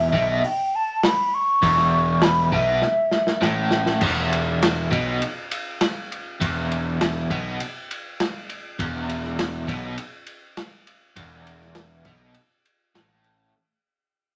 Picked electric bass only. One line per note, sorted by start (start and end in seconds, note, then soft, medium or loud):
0.13 0.41 B1 medium
1.63 2.49 E1 medium
2.52 2.80 B1 medium
3.42 3.98 A1 medium
4.02 4.88 E1 medium
4.92 5.20 B1 medium
6.41 7.26 E1 medium
7.31 7.58 B1 medium
8.79 9.64 E1 medium
9.68 9.96 B1 medium
11.17 12.02 E1 loud
12.06 12.33 B1 medium
12.97 13.51 A1 medium